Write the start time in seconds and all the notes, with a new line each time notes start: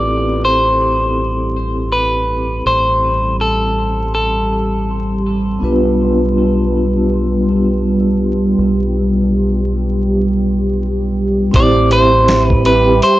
Already playing: A1 G3 C4 E4 G4 A4 D5
0.45 C5
1.92 B4
2.66 A1 C5
3.41 A4
4.15 A4
5.59 B1 B3 D4 F4
5.64 B4
8.58 B1
11.51 A1 G3 C4 E4 G4 E5, kick, closed hi-hat
11.56 C5 D5
11.91 C5, closed hi-hat
12.28 snare, closed hi-hat
12.46 B4
12.50 kick
12.64 C4 E4 G4 B4, closed hi-hat
13.02 C5, closed hi-hat